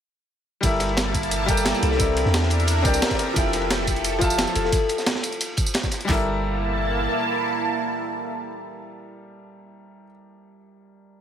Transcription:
0.61 1.73 G1 loud
0.61 1.44 G3 medium
0.61 1.98 A#3 medium
0.61 1.99 E4 medium
0.61 1.98 E4 medium
0.61 1.46 G4 medium
0.61 1.47 A4 medium
0.61 1.98 A5 medium
0.61 kick loud
0.61 closed hi-hat loud
0.61 ride loud
0.61 tambourine medium
0.65 1.47 A#4 medium
0.65 1.48 E5 medium
0.80 snare soft
0.80 closed hi-hat medium
0.80 ride medium
0.89 ride soft
0.97 snare loud
0.97 closed hi-hat loud
0.97 ride medium
0.97 tambourine medium
1.14 kick medium
1.14 closed hi-hat medium
1.14 ride medium
1.14 tambourine soft
1.23 closed hi-hat soft
1.31 closed hi-hat medium
1.31 ride medium
1.31 tambourine medium
1.46 1.96 G3 medium
1.46 1.97 G4 medium
1.46 2.85 G4 loud
1.46 1.98 A4 medium
1.46 1.98 A#4 medium
1.46 kick loud
1.46 closed hi-hat medium
1.46 ride medium
1.46 tambourine medium
1.51 1.99 G5 loud
1.57 tambourine medium
1.65 snare loud
1.65 closed hi-hat medium
1.65 ride medium
1.65 tambourine medium
1.74 tambourine soft
1.83 2.24 C2 medium
1.83 3.25 A4 medium
1.83 closed hi-hat medium
1.83 ride medium
1.91 snare soft
1.97 2.81 C4 medium
1.97 3.35 D4 medium
1.97 3.36 E4 medium
1.97 2.82 G4 medium
1.97 3.35 A#4 medium
1.97 2.83 A#4 medium
1.97 2.84 D5 medium
1.97 4.70 E5 medium
1.97 kick loud
1.97 closed hi-hat loud
1.97 ride medium
1.97 tambourine soft
2.03 2.84 E5 medium
2.17 closed hi-hat medium
2.17 ride medium
2.25 2.84 E2 loud
2.25 snare soft
2.34 snare loud
2.34 closed hi-hat medium
2.34 ride loud
2.34 tambourine soft
2.42 snare soft
2.50 closed hi-hat medium
2.50 ride medium
2.50 tambourine soft
2.60 closed hi-hat soft
2.67 closed hi-hat loud
2.67 ride medium
2.67 tambourine medium
2.82 3.00 C2 medium
2.82 3.33 C4 medium
2.82 3.33 G4 medium
2.82 5.21 G4 loud
2.82 3.34 A#4 medium
2.82 3.35 D5 medium
2.82 kick loud
2.82 closed hi-hat medium
2.82 ride medium
2.82 tambourine medium
2.88 3.35 G5 loud
2.94 tambourine medium
3.02 snare loud
3.02 closed hi-hat loud
3.02 ride medium
3.02 tambourine soft
3.05 snare loud
3.05 ride medium
3.10 kick medium
3.10 snare loud
3.10 ride medium
3.10 tambourine soft
3.15 snare medium
3.15 ride medium
3.19 4.61 A#4 medium
3.19 snare medium
3.19 closed hi-hat medium
3.19 ride medium
3.33 4.46 F1 loud
3.33 4.17 F3 medium
3.33 4.27 E4 medium
3.33 4.71 G4 medium
3.33 4.19 A4 medium
3.33 4.71 A4 medium
3.33 kick loud
3.33 closed hi-hat medium
3.33 ride loud
3.33 tambourine soft
3.37 4.20 E5 medium
3.37 4.21 G5 medium
3.53 snare soft
3.53 closed hi-hat medium
3.53 ride medium
3.62 ride soft
3.70 snare loud
3.70 closed hi-hat medium
3.70 ride loud
3.70 tambourine soft
3.87 kick medium
3.87 closed hi-hat medium
3.87 ride medium
3.87 tambourine soft
3.96 closed hi-hat soft
4.04 closed hi-hat loud
4.04 ride medium
4.04 tambourine soft
4.18 4.69 F3 loud
4.18 4.70 F4 medium
4.18 6.15 F4 loud
4.18 4.70 A4 medium
4.18 kick loud
4.18 closed hi-hat medium
4.18 ride medium
4.18 tambourine medium
4.23 4.71 E5 medium
4.23 4.72 A5 loud
4.30 tambourine medium
4.38 snare loud
4.38 closed hi-hat medium
4.38 ride medium
4.38 tambourine soft
4.47 tambourine soft
4.55 4.71 F1 medium
4.55 6.75 A4 medium
4.55 closed hi-hat medium
4.55 ride medium
4.65 snare soft
4.72 kick loud
4.72 closed hi-hat medium
4.72 ride medium
4.72 tambourine soft
4.89 closed hi-hat medium
4.89 ride medium
4.98 snare medium
4.98 tambourine soft
5.06 snare loud
5.06 closed hi-hat medium
5.06 ride medium
5.06 tambourine soft
5.15 snare soft
5.23 closed hi-hat medium
5.23 ride medium
5.23 tambourine soft
5.32 closed hi-hat soft
5.41 closed hi-hat medium
5.41 ride medium
5.41 tambourine soft
5.57 kick loud
5.57 closed hi-hat medium
5.57 ride medium
5.57 tambourine medium
5.66 tambourine medium
5.74 snare loud
5.74 closed hi-hat medium
5.74 ride loud
5.74 tambourine soft
5.83 kick medium
5.83 snare medium
5.83 tambourine soft
5.91 snare soft
5.91 closed hi-hat medium
5.91 ride medium
5.91 tambourine soft
6.01 10.02 G3 medium
6.01 closed hi-hat soft
6.06 7.07 G1 loud
6.06 9.57 A#3 medium
6.06 9.57 E4 medium
6.06 8.70 E4 medium
6.06 10.04 G4 medium
6.06 10.06 A4 medium
6.06 9.57 A5 medium
6.06 kick loud
6.06 snare loud
6.06 clap medium
6.10 10.08 A#4 medium
6.10 10.10 E5 medium

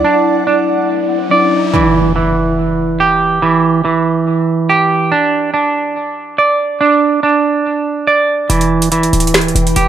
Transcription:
0.00 1.25 F#3 medium
0.00 1.27 D4 medium
0.00 1.29 E4 medium
0.00 1.70 E4 medium
0.00 1.30 D5 medium
0.00 1.70 D5 medium
0.00 1.70 F#5 medium
0.04 0.46 D4 medium
0.04 riser medium
0.47 1.74 D4 medium
1.29 1.73 F#3 medium
1.29 1.74 D4 medium
1.29 1.75 E4 medium
1.29 1.74 D5 loud
1.74 2.15 E3 loud
1.74 impact medium
2.16 3.41 E3 medium
3.00 4.68 G4 medium
3.42 3.84 E3 medium
3.85 5.12 E3 medium
4.69 5.12 G4 loud
5.12 5.52 D4 medium
5.54 6.79 D4 medium
6.38 8.06 D5 loud
6.81 7.22 D4 loud
7.23 8.50 D4 medium
8.07 8.50 D5 loud
8.50 9.11 E1 loud
8.50 8.91 E3 medium
8.50 9.88 E4 medium
8.50 9.88 B4 medium
8.50 9.88 G5 loud
8.50 closed hi-hat medium
8.61 closed hi-hat medium
8.82 closed hi-hat medium
8.92 9.88 E3 medium
8.92 closed hi-hat medium
9.03 closed hi-hat medium
9.13 9.54 D1 loud
9.13 closed hi-hat medium
9.20 closed hi-hat medium
9.27 closed hi-hat medium
9.34 finger snap medium
9.34 snare loud
9.34 closed hi-hat medium
9.41 closed hi-hat soft
9.48 closed hi-hat soft
9.55 9.76 E1 loud
9.55 closed hi-hat medium
9.67 closed hi-hat medium
9.76 9.88 E1 loud
9.76 9.88 G4 medium
9.76 closed hi-hat medium

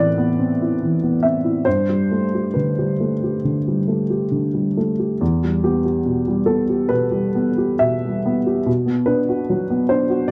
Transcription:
0.00 1.68 A2 medium
0.00 0.83 E3 soft
0.00 0.18 B3 soft
0.00 0.39 C4 soft
0.00 0.62 E4 soft
0.00 1.68 A4 medium
0.00 1.68 B4 medium
0.00 1.23 D5 medium
0.18 0.51 B3 soft
0.39 0.72 C4 soft
0.62 0.94 E4 soft
0.83 1.16 E3 soft
1.03 1.37 B3 soft
1.23 1.58 C4 soft
1.23 1.66 E5 medium
1.44 1.66 E4 soft
1.65 3.40 G2 soft
1.65 2.53 C5 medium
1.89 2.24 G3 soft
2.11 2.46 A3 soft
2.35 2.69 G4 soft
2.54 2.91 D3 soft
2.54 4.76 B4 soft
2.79 3.13 G3 soft
3.00 3.35 A3 soft
3.24 3.58 G4 soft
3.44 3.79 D3 soft
3.68 4.02 G3 soft
3.88 4.23 A3 soft
4.10 4.45 G4 soft
4.31 4.67 D3 soft
4.54 4.90 G3 soft
4.77 5.12 A3 soft
4.99 5.21 G4 soft
5.21 6.89 E2 medium
5.44 5.77 G3 soft
5.64 5.99 B3 soft
5.64 5.84 G4 medium
5.85 6.20 G4 soft
6.06 6.40 B2 soft
6.27 6.62 G3 soft
6.46 6.83 B3 soft
6.46 6.91 A4 medium
6.69 7.05 G4 soft
6.89 7.27 B2 soft
6.89 7.81 B4 medium
7.11 7.50 G3 soft
7.35 7.73 B3 soft
7.58 7.95 G4 soft
7.79 8.16 B2 soft
7.79 8.65 E5 medium
8.05 8.38 G3 soft
8.26 8.59 B3 soft
8.46 8.67 G4 soft
8.66 10.26 B2 medium
8.86 9.20 B3 soft
9.06 9.41 D4 soft
9.06 9.89 B4 medium
9.29 9.62 F#4 soft
9.50 9.82 F#3 soft
9.70 10.03 B3 soft
9.89 10.23 D4 soft
9.89 10.30 C5 medium
10.10 10.31 F#4 soft
10.28 10.31 D5 medium

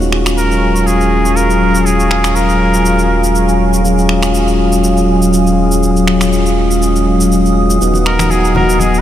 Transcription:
0.00 7.79 D#1 medium
0.00 3.82 F#3 medium
0.00 7.77 F#3 medium
0.00 3.82 G#3 medium
0.00 3.82 C#4 medium
0.00 3.82 F4 medium
0.00 7.77 F5 medium
0.00 7.77 G#5 medium
0.00 3.80 C#6 medium
0.00 shaker soft
0.12 finger snap medium
0.26 finger snap medium
0.26 shaker medium
0.37 0.88 A#4 loud
0.37 shaker medium
0.51 shaker soft
0.76 shaker medium
0.86 1.37 G#4 loud
0.86 shaker medium
1.01 shaker soft
1.26 shaker medium
1.36 1.87 A#4 medium
1.36 shaker medium
1.50 shaker soft
1.75 shaker medium
1.85 2.36 G#4 medium
1.85 shaker medium
2.00 shaker soft
2.11 finger snap medium
2.24 finger snap medium
2.24 shaker medium
2.35 3.59 A#4 medium
2.35 shaker medium
2.49 shaker soft
2.74 shaker medium
2.86 shaker medium
2.99 shaker soft
3.24 shaker medium
3.35 shaker medium
3.49 shaker soft
3.74 shaker medium
3.84 7.78 F#3 medium
3.84 7.78 G#3 medium
3.84 7.78 C#4 medium
3.84 7.78 F4 medium
3.84 9.01 D#6 medium
3.84 shaker medium
3.98 shaker soft
4.09 finger snap medium
4.23 finger snap medium
4.23 shaker medium
4.34 shaker medium
4.48 shaker soft
4.72 shaker medium
4.84 shaker medium
4.97 shaker soft
5.22 shaker medium
5.33 shaker medium
5.47 shaker soft
5.72 shaker medium
5.83 shaker medium
5.97 shaker soft
6.07 finger snap medium
6.21 finger snap medium
6.21 shaker medium
6.33 shaker medium
6.46 shaker soft
6.71 shaker medium
6.82 shaker medium
6.96 shaker soft
7.21 shaker medium
7.32 shaker medium
7.46 shaker soft
7.70 shaker medium
7.81 9.01 D#1 medium
7.81 9.01 F#3 medium
7.81 9.01 B3 medium
7.81 9.01 D#4 medium
7.81 9.01 F#4 medium
7.81 9.01 D#5 medium
7.81 9.01 F#5 medium
7.81 shaker medium
7.94 muted conga soft
7.94 shaker soft
8.06 8.32 A#4 medium
8.06 finger snap medium
8.19 finger snap medium
8.19 high conga loud
8.19 shaker medium
8.30 8.55 G#4 medium
8.30 muted conga soft
8.30 shaker medium
8.45 shaker soft
8.55 8.81 A#4 loud
8.55 muted conga soft
8.55 high conga medium
8.55 low conga loud
8.70 shaker medium
8.80 9.00 G#4 loud
8.80 muted conga soft
8.80 high conga medium
8.80 shaker medium
8.94 shaker soft

